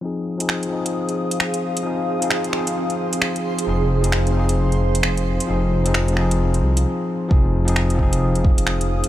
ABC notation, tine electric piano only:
X:1
M:4/4
L:1/16
Q:"Swing 16ths" 1/4=132
K:Fm
V:1 name="Tine electric piano"
[F,CEA]3 [F,CEA]3 [F,CEA]8- [F,CEA]2 | [F,CEA]3 [F,CEA]3 [F,CEA]8- [F,CEA]2 | [F,CEA]3 [F,CEA]3 [F,CEA]8- [F,CEA]2 | [F,CEA]3 [F,CEA]3 [F,CEA]6 z4 |
[F,CEA]3 [F,CEA]3 [F,CEA]8- [F,CEA]2 |]